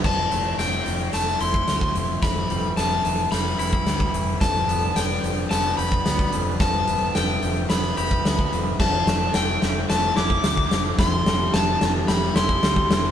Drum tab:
CC |x---------------|----------------|----------------|----------------|
HH |--x-x-x-x-x-x-x-|x-x-x-x-x-x-x-x-|x-x-x-x-x-x-x-x-|x-x-x-x-x-x-x-x-|
SD |o---o---o---o---|o---o---o---o---|o---o---o---o---|o---o---o---o---|
BD |o----------o-o--|o----------o-o--|o----------o-o--|o----------o-o--|

CC |x---------------|----------------|
HH |--x-x-x-x-x-x-x-|x-x-x-x-x-x-x-x-|
SD |o-o-o-o-o-o-o-o-|o-o-o-o-o-o-o-o-|
BD |o----------o-o--|o----------o-o--|